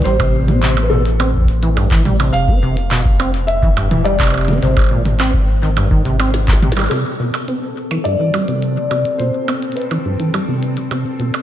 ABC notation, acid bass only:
X:1
M:4/4
L:1/16
Q:1/4=105
K:C
V:1 name="Acid bass" clef=bass
G, C,2 C C, z B,, z C z2 E, G,, E, G, C,- | C, C C, z B,, z C z2 E, G,, E, G, C,2 C | C, z _B,, z C z2 _E, G,, E, C, C z C,, C, G, | C, z B,, z C z2 E, G,, E, G, C,2 C C, z |
B,, z C z2 E, G,, E, G, C,2 C C, z B,, z |]